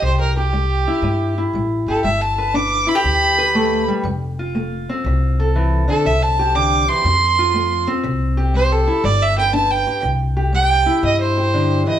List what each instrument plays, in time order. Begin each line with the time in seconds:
Already playing: steel-string acoustic guitar G4 C5
0.01 upright bass C2, steel-string acoustic guitar C3, fiddle C5
0.20 fiddle A#4
0.37 steel-string acoustic guitar G4, fiddle G4
0.53 steel-string acoustic guitar G3
0.88 steel-string acoustic guitar E4
1.02 upright bass G2, steel-string acoustic guitar G3
1.38 steel-string acoustic guitar E4
1.53 upright bass A1, steel-string acoustic guitar G3
1.87 upright bass G1, steel-string acoustic guitar G4, fiddle A4
2.04 upright bass G1, steel-string acoustic guitar G3, fiddle E5
2.21 fiddle A5
2.38 steel-string acoustic guitar B4
2.54 steel-string acoustic guitar D4, fiddle D6
2.87 steel-string acoustic guitar E4, fiddle B5
2.95 steel-string acoustic guitar G4
3.04 upright bass D2, steel-string acoustic guitar D3
3.38 steel-string acoustic guitar B4
3.55 steel-string acoustic guitar A3
3.88 steel-string acoustic guitar G3
4.04 upright bass F1, steel-string acoustic guitar F3
4.39 steel-string acoustic guitar F4
4.55 steel-string acoustic guitar A3
4.89 steel-string acoustic guitar C4
5.05 upright bass C2, steel-string acoustic guitar C3
5.40 steel-string acoustic guitar A4
5.56 steel-string acoustic guitar E3
5.88 steel-string acoustic guitar D3, fiddle A4
6.05 upright bass C2, steel-string acoustic guitar C3, fiddle E5
6.22 fiddle A5
6.39 steel-string acoustic guitar G4
6.55 steel-string acoustic guitar D3, fiddle D6
6.88 steel-string acoustic guitar E3, fiddle C6
7.04 upright bass F2, steel-string acoustic guitar F3
7.39 steel-string acoustic guitar F4
7.54 steel-string acoustic guitar A3
7.87 steel-string acoustic guitar C4
8.04 upright bass C2, steel-string acoustic guitar C3
8.37 steel-string acoustic guitar G4
8.54 steel-string acoustic guitar G3, fiddle C5
8.72 fiddle A4
8.87 steel-string acoustic guitar E4
9.04 upright bass G1, steel-string acoustic guitar G3, fiddle D5
9.23 fiddle E5
9.38 steel-string acoustic guitar B4, fiddle G5
9.53 steel-string acoustic guitar D4, fiddle A5
9.71 fiddle G5
9.87 steel-string acoustic guitar G4
10.02 upright bass C2, steel-string acoustic guitar C3
10.37 steel-string acoustic guitar G4
10.53 steel-string acoustic guitar G3, fiddle G5
10.86 steel-string acoustic guitar E4
11.03 upright bass G2, steel-string acoustic guitar C3, fiddle D#5
11.21 fiddle C5
11.37 steel-string acoustic guitar G4
11.54 steel-string acoustic guitar D3
11.87 steel-string acoustic guitar E3, fiddle D#5